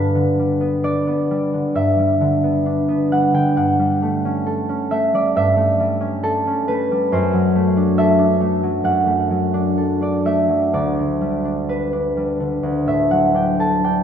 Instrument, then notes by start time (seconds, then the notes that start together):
harp
Already playing: G2 G3 B3 D4 A4 B4
0.15 D3
0.39 G3
0.61 B3
0.83 D4 D5
1.07 B3
1.31 G3
1.54 D3
1.75 G2 E5
1.99 G3
2.21 D3
2.44 B3
2.66 D4
2.89 B3
3.12 G3 F#5
3.33 D3 G5
3.56 G2 F#5
3.79 G3
4.02 A3
4.25 C#4
4.46 A4
4.69 C#4
4.91 A3 E5
5.13 G3 D5
5.36 G2 E5
5.56 A3
5.80 G3
6.01 C#4
6.23 A4
6.47 C#4
6.68 A3 B4
6.92 G3
7.12 F#2 C5
7.33 F#3
7.55 A3
7.77 D4
7.98 A4 E5
8.19 D4
8.41 A3
8.63 F#3
8.84 F#2 F#5
9.06 A3
9.31 F#3
9.54 D4
9.78 A4
10.01 D4 D5
10.25 A3 E5
10.49 F#3
10.73 D2 D5
10.99 D3
11.21 G3
11.45 D4
11.69 B4
11.93 D4
12.17 G3
12.40 D3
12.63 D2
12.86 A2 E5
13.10 F#3 F#5
13.35 D4 G5
13.59 A4 A5
13.84 D4 G5